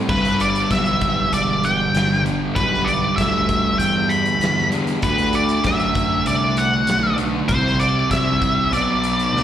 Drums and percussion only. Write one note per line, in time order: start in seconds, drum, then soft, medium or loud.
0.09 kick loud
0.09 crash medium
0.25 snare soft
0.25 closed hi-hat medium
0.40 closed hi-hat medium
0.55 closed hi-hat medium
0.71 kick medium
0.71 snare loud
0.71 closed hi-hat loud
0.86 closed hi-hat soft
1.01 kick loud
1.01 closed hi-hat medium
1.33 closed hi-hat loud
1.64 closed hi-hat medium
1.95 snare loud
1.95 closed hi-hat loud
2.13 snare soft
2.26 closed hi-hat medium
2.56 kick loud
2.56 closed hi-hat loud
2.74 snare soft
2.88 closed hi-hat medium
3.18 kick medium
3.18 snare loud
3.18 closed hi-hat loud
3.49 kick medium
3.49 closed hi-hat medium
3.80 closed hi-hat loud
4.10 closed hi-hat medium
4.26 closed hi-hat soft
4.41 snare loud
4.41 closed hi-hat loud
4.59 snare soft
4.72 closed hi-hat medium
4.87 closed hi-hat medium
5.02 kick loud
5.02 closed hi-hat loud
5.18 snare soft
5.18 closed hi-hat medium
5.33 closed hi-hat medium
5.49 closed hi-hat medium
5.64 kick medium
5.64 snare loud
5.64 closed hi-hat loud
5.80 closed hi-hat soft
5.95 kick medium
5.95 closed hi-hat medium
6.26 closed hi-hat loud
6.57 closed hi-hat medium
6.87 snare loud
6.87 closed hi-hat loud
7.18 closed hi-hat medium
7.49 kick loud
7.49 closed hi-hat loud
7.67 snare soft
7.80 closed hi-hat medium
8.11 kick medium
8.11 snare loud
8.11 closed hi-hat loud
8.42 kick medium
8.42 closed hi-hat medium
8.73 closed hi-hat medium
9.04 closed hi-hat medium
9.19 closed hi-hat soft
9.37 snare medium